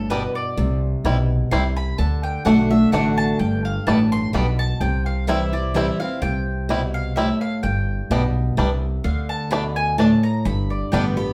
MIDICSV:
0, 0, Header, 1, 5, 480
1, 0, Start_track
1, 0, Key_signature, 0, "major"
1, 0, Tempo, 470588
1, 588, Time_signature, 3, 2, 24, 8
1, 11557, End_track
2, 0, Start_track
2, 0, Title_t, "Mandolin"
2, 0, Program_c, 0, 25
2, 101, Note_on_c, 0, 71, 85
2, 354, Note_off_c, 0, 71, 0
2, 359, Note_on_c, 0, 74, 94
2, 808, Note_off_c, 0, 74, 0
2, 1543, Note_on_c, 0, 84, 94
2, 1795, Note_off_c, 0, 84, 0
2, 1800, Note_on_c, 0, 83, 103
2, 2018, Note_off_c, 0, 83, 0
2, 2022, Note_on_c, 0, 81, 89
2, 2274, Note_off_c, 0, 81, 0
2, 2279, Note_on_c, 0, 79, 89
2, 2497, Note_off_c, 0, 79, 0
2, 2501, Note_on_c, 0, 78, 88
2, 2754, Note_off_c, 0, 78, 0
2, 2759, Note_on_c, 0, 76, 104
2, 2977, Note_off_c, 0, 76, 0
2, 2981, Note_on_c, 0, 78, 95
2, 3234, Note_off_c, 0, 78, 0
2, 3239, Note_on_c, 0, 81, 116
2, 3456, Note_off_c, 0, 81, 0
2, 3460, Note_on_c, 0, 79, 89
2, 3714, Note_off_c, 0, 79, 0
2, 3722, Note_on_c, 0, 77, 93
2, 3940, Note_off_c, 0, 77, 0
2, 3945, Note_on_c, 0, 81, 97
2, 4196, Note_off_c, 0, 81, 0
2, 4203, Note_on_c, 0, 84, 124
2, 4420, Note_off_c, 0, 84, 0
2, 4424, Note_on_c, 0, 83, 88
2, 4676, Note_off_c, 0, 83, 0
2, 4681, Note_on_c, 0, 81, 107
2, 4899, Note_off_c, 0, 81, 0
2, 4903, Note_on_c, 0, 79, 88
2, 5155, Note_off_c, 0, 79, 0
2, 5161, Note_on_c, 0, 77, 91
2, 5379, Note_off_c, 0, 77, 0
2, 5386, Note_on_c, 0, 76, 91
2, 5636, Note_off_c, 0, 76, 0
2, 5641, Note_on_c, 0, 74, 97
2, 5859, Note_off_c, 0, 74, 0
2, 5862, Note_on_c, 0, 76, 88
2, 6114, Note_off_c, 0, 76, 0
2, 6118, Note_on_c, 0, 77, 92
2, 6337, Note_off_c, 0, 77, 0
2, 6343, Note_on_c, 0, 79, 96
2, 7041, Note_off_c, 0, 79, 0
2, 7080, Note_on_c, 0, 77, 103
2, 7297, Note_off_c, 0, 77, 0
2, 7301, Note_on_c, 0, 76, 88
2, 7554, Note_off_c, 0, 76, 0
2, 7559, Note_on_c, 0, 77, 92
2, 7777, Note_off_c, 0, 77, 0
2, 7781, Note_on_c, 0, 79, 89
2, 8703, Note_off_c, 0, 79, 0
2, 9223, Note_on_c, 0, 77, 85
2, 9473, Note_off_c, 0, 77, 0
2, 9478, Note_on_c, 0, 81, 97
2, 9697, Note_off_c, 0, 81, 0
2, 9702, Note_on_c, 0, 83, 100
2, 9952, Note_off_c, 0, 83, 0
2, 9956, Note_on_c, 0, 80, 101
2, 10175, Note_off_c, 0, 80, 0
2, 10184, Note_on_c, 0, 81, 96
2, 10433, Note_off_c, 0, 81, 0
2, 10438, Note_on_c, 0, 82, 107
2, 10656, Note_off_c, 0, 82, 0
2, 10662, Note_on_c, 0, 83, 101
2, 10912, Note_off_c, 0, 83, 0
2, 10917, Note_on_c, 0, 74, 75
2, 11135, Note_off_c, 0, 74, 0
2, 11136, Note_on_c, 0, 79, 101
2, 11389, Note_off_c, 0, 79, 0
2, 11393, Note_on_c, 0, 83, 100
2, 11557, Note_off_c, 0, 83, 0
2, 11557, End_track
3, 0, Start_track
3, 0, Title_t, "Five-string banjo"
3, 0, Program_c, 1, 105
3, 114, Note_on_c, 1, 55, 64
3, 118, Note_on_c, 1, 59, 67
3, 119, Note_on_c, 1, 62, 64
3, 224, Note_off_c, 1, 55, 0
3, 225, Note_off_c, 1, 59, 0
3, 226, Note_off_c, 1, 62, 0
3, 1075, Note_on_c, 1, 55, 63
3, 1080, Note_on_c, 1, 60, 62
3, 1082, Note_on_c, 1, 64, 64
3, 1185, Note_off_c, 1, 55, 0
3, 1186, Note_off_c, 1, 60, 0
3, 1188, Note_off_c, 1, 64, 0
3, 1554, Note_on_c, 1, 55, 71
3, 1558, Note_on_c, 1, 60, 67
3, 1560, Note_on_c, 1, 64, 65
3, 1665, Note_off_c, 1, 55, 0
3, 1666, Note_off_c, 1, 60, 0
3, 1667, Note_off_c, 1, 64, 0
3, 2509, Note_on_c, 1, 57, 66
3, 2516, Note_on_c, 1, 62, 70
3, 2517, Note_off_c, 1, 62, 0
3, 2517, Note_on_c, 1, 62, 66
3, 2622, Note_off_c, 1, 57, 0
3, 2626, Note_off_c, 1, 62, 0
3, 2993, Note_on_c, 1, 57, 69
3, 2999, Note_on_c, 1, 62, 68
3, 3000, Note_off_c, 1, 62, 0
3, 3000, Note_on_c, 1, 62, 67
3, 3104, Note_off_c, 1, 57, 0
3, 3107, Note_off_c, 1, 62, 0
3, 3952, Note_on_c, 1, 55, 67
3, 3958, Note_on_c, 1, 59, 65
3, 3958, Note_on_c, 1, 62, 70
3, 4063, Note_off_c, 1, 55, 0
3, 4065, Note_off_c, 1, 59, 0
3, 4066, Note_off_c, 1, 62, 0
3, 4431, Note_on_c, 1, 55, 70
3, 4436, Note_on_c, 1, 59, 71
3, 4438, Note_on_c, 1, 62, 67
3, 4543, Note_off_c, 1, 55, 0
3, 4544, Note_off_c, 1, 59, 0
3, 4546, Note_off_c, 1, 62, 0
3, 5391, Note_on_c, 1, 55, 65
3, 5398, Note_on_c, 1, 60, 73
3, 5400, Note_on_c, 1, 64, 65
3, 5504, Note_off_c, 1, 55, 0
3, 5505, Note_off_c, 1, 60, 0
3, 5507, Note_off_c, 1, 64, 0
3, 5873, Note_on_c, 1, 55, 69
3, 5879, Note_on_c, 1, 60, 69
3, 5882, Note_on_c, 1, 64, 71
3, 5984, Note_off_c, 1, 55, 0
3, 5986, Note_off_c, 1, 60, 0
3, 5988, Note_off_c, 1, 64, 0
3, 6836, Note_on_c, 1, 55, 65
3, 6840, Note_on_c, 1, 60, 65
3, 6841, Note_on_c, 1, 64, 67
3, 6945, Note_off_c, 1, 55, 0
3, 6946, Note_off_c, 1, 60, 0
3, 6948, Note_off_c, 1, 64, 0
3, 7316, Note_on_c, 1, 55, 67
3, 7321, Note_on_c, 1, 60, 69
3, 7323, Note_on_c, 1, 64, 68
3, 7425, Note_off_c, 1, 55, 0
3, 7427, Note_off_c, 1, 60, 0
3, 7428, Note_off_c, 1, 64, 0
3, 8274, Note_on_c, 1, 55, 65
3, 8279, Note_on_c, 1, 59, 68
3, 8281, Note_on_c, 1, 62, 68
3, 8384, Note_off_c, 1, 55, 0
3, 8385, Note_off_c, 1, 59, 0
3, 8387, Note_off_c, 1, 62, 0
3, 8752, Note_on_c, 1, 55, 66
3, 8759, Note_on_c, 1, 59, 65
3, 8760, Note_on_c, 1, 62, 66
3, 8863, Note_off_c, 1, 55, 0
3, 8865, Note_off_c, 1, 59, 0
3, 8866, Note_off_c, 1, 62, 0
3, 9711, Note_on_c, 1, 57, 68
3, 9718, Note_on_c, 1, 62, 68
3, 9822, Note_off_c, 1, 57, 0
3, 9825, Note_off_c, 1, 62, 0
3, 10192, Note_on_c, 1, 57, 68
3, 10196, Note_on_c, 1, 62, 69
3, 10198, Note_off_c, 1, 62, 0
3, 10198, Note_on_c, 1, 62, 69
3, 10302, Note_off_c, 1, 57, 0
3, 10305, Note_off_c, 1, 62, 0
3, 11151, Note_on_c, 1, 55, 70
3, 11155, Note_on_c, 1, 59, 65
3, 11158, Note_on_c, 1, 62, 71
3, 11261, Note_off_c, 1, 55, 0
3, 11262, Note_off_c, 1, 59, 0
3, 11264, Note_off_c, 1, 62, 0
3, 11557, End_track
4, 0, Start_track
4, 0, Title_t, "Steel-string acoustic guitar"
4, 0, Program_c, 2, 25
4, 105, Note_on_c, 2, 47, 91
4, 564, Note_off_c, 2, 47, 0
4, 586, Note_on_c, 2, 48, 93
4, 1067, Note_on_c, 2, 47, 86
4, 1503, Note_off_c, 2, 48, 0
4, 1525, Note_off_c, 2, 47, 0
4, 1544, Note_on_c, 2, 48, 90
4, 2004, Note_off_c, 2, 48, 0
4, 2025, Note_on_c, 2, 50, 91
4, 2485, Note_off_c, 2, 50, 0
4, 2497, Note_on_c, 2, 50, 90
4, 2503, Note_on_c, 2, 57, 96
4, 2512, Note_on_c, 2, 62, 94
4, 2516, Note_on_c, 2, 66, 105
4, 2747, Note_off_c, 2, 66, 0
4, 2749, Note_off_c, 2, 50, 0
4, 2753, Note_off_c, 2, 57, 0
4, 2757, Note_off_c, 2, 62, 0
4, 2759, Note_on_c, 2, 66, 56
4, 2775, Note_on_c, 2, 62, 48
4, 2976, Note_off_c, 2, 66, 0
4, 2984, Note_off_c, 2, 62, 0
4, 2985, Note_on_c, 2, 50, 90
4, 2990, Note_on_c, 2, 57, 96
4, 2995, Note_on_c, 2, 62, 90
4, 3000, Note_on_c, 2, 66, 102
4, 3444, Note_off_c, 2, 50, 0
4, 3447, Note_off_c, 2, 57, 0
4, 3449, Note_off_c, 2, 62, 0
4, 3452, Note_off_c, 2, 66, 0
4, 3463, Note_on_c, 2, 43, 97
4, 3944, Note_on_c, 2, 45, 89
4, 4381, Note_off_c, 2, 43, 0
4, 4404, Note_off_c, 2, 45, 0
4, 4418, Note_on_c, 2, 47, 87
4, 4881, Note_off_c, 2, 47, 0
4, 4906, Note_on_c, 2, 48, 95
4, 5378, Note_on_c, 2, 52, 89
4, 5383, Note_on_c, 2, 55, 91
4, 5390, Note_on_c, 2, 60, 85
4, 5395, Note_on_c, 2, 64, 102
4, 5625, Note_off_c, 2, 64, 0
4, 5630, Note_off_c, 2, 52, 0
4, 5632, Note_off_c, 2, 55, 0
4, 5636, Note_off_c, 2, 60, 0
4, 5637, Note_on_c, 2, 64, 56
4, 5655, Note_on_c, 2, 60, 46
4, 5822, Note_off_c, 2, 48, 0
4, 5855, Note_off_c, 2, 64, 0
4, 5857, Note_on_c, 2, 52, 79
4, 5861, Note_off_c, 2, 60, 0
4, 5865, Note_on_c, 2, 55, 92
4, 5873, Note_on_c, 2, 60, 100
4, 5876, Note_on_c, 2, 64, 100
4, 6105, Note_off_c, 2, 64, 0
4, 6109, Note_off_c, 2, 52, 0
4, 6113, Note_off_c, 2, 55, 0
4, 6117, Note_off_c, 2, 60, 0
4, 6118, Note_on_c, 2, 64, 64
4, 6136, Note_on_c, 2, 60, 54
4, 6335, Note_off_c, 2, 64, 0
4, 6341, Note_on_c, 2, 48, 92
4, 6345, Note_off_c, 2, 60, 0
4, 6824, Note_on_c, 2, 47, 90
4, 7260, Note_off_c, 2, 48, 0
4, 7283, Note_off_c, 2, 47, 0
4, 7312, Note_on_c, 2, 45, 91
4, 7767, Note_off_c, 2, 45, 0
4, 7787, Note_on_c, 2, 43, 93
4, 8270, Note_on_c, 2, 47, 96
4, 8702, Note_off_c, 2, 43, 0
4, 8726, Note_off_c, 2, 47, 0
4, 8744, Note_on_c, 2, 48, 93
4, 9202, Note_off_c, 2, 48, 0
4, 9223, Note_on_c, 2, 50, 91
4, 9696, Note_on_c, 2, 47, 91
4, 10139, Note_off_c, 2, 50, 0
4, 10158, Note_off_c, 2, 47, 0
4, 10181, Note_on_c, 2, 45, 92
4, 10640, Note_off_c, 2, 45, 0
4, 10664, Note_on_c, 2, 43, 94
4, 11138, Note_on_c, 2, 50, 84
4, 11147, Note_on_c, 2, 55, 93
4, 11153, Note_on_c, 2, 59, 92
4, 11157, Note_on_c, 2, 67, 98
4, 11381, Note_off_c, 2, 67, 0
4, 11387, Note_off_c, 2, 50, 0
4, 11392, Note_off_c, 2, 55, 0
4, 11393, Note_on_c, 2, 67, 60
4, 11395, Note_off_c, 2, 59, 0
4, 11412, Note_on_c, 2, 59, 49
4, 11557, Note_off_c, 2, 43, 0
4, 11557, Note_off_c, 2, 59, 0
4, 11557, Note_off_c, 2, 67, 0
4, 11557, End_track
5, 0, Start_track
5, 0, Title_t, "Upright bass"
5, 0, Program_c, 3, 32
5, 0, Note_on_c, 3, 31, 92
5, 255, Note_off_c, 3, 31, 0
5, 583, Note_on_c, 3, 36, 91
5, 954, Note_off_c, 3, 36, 0
5, 1063, Note_on_c, 3, 35, 86
5, 1473, Note_off_c, 3, 35, 0
5, 1545, Note_on_c, 3, 36, 83
5, 1955, Note_off_c, 3, 36, 0
5, 2028, Note_on_c, 3, 38, 91
5, 2398, Note_off_c, 3, 38, 0
5, 2507, Note_on_c, 3, 35, 89
5, 2916, Note_off_c, 3, 35, 0
5, 2986, Note_on_c, 3, 33, 84
5, 3395, Note_off_c, 3, 33, 0
5, 3467, Note_on_c, 3, 31, 93
5, 3837, Note_off_c, 3, 31, 0
5, 3946, Note_on_c, 3, 33, 92
5, 4355, Note_off_c, 3, 33, 0
5, 4423, Note_on_c, 3, 35, 91
5, 4833, Note_off_c, 3, 35, 0
5, 4900, Note_on_c, 3, 36, 91
5, 6011, Note_off_c, 3, 36, 0
5, 6342, Note_on_c, 3, 36, 92
5, 7452, Note_off_c, 3, 36, 0
5, 7788, Note_on_c, 3, 31, 88
5, 8157, Note_off_c, 3, 31, 0
5, 8265, Note_on_c, 3, 35, 86
5, 8674, Note_off_c, 3, 35, 0
5, 8748, Note_on_c, 3, 36, 84
5, 9155, Note_off_c, 3, 36, 0
5, 9227, Note_on_c, 3, 38, 88
5, 10333, Note_off_c, 3, 38, 0
5, 10664, Note_on_c, 3, 31, 89
5, 11033, Note_off_c, 3, 31, 0
5, 11146, Note_on_c, 3, 33, 87
5, 11553, Note_off_c, 3, 33, 0
5, 11557, End_track
0, 0, End_of_file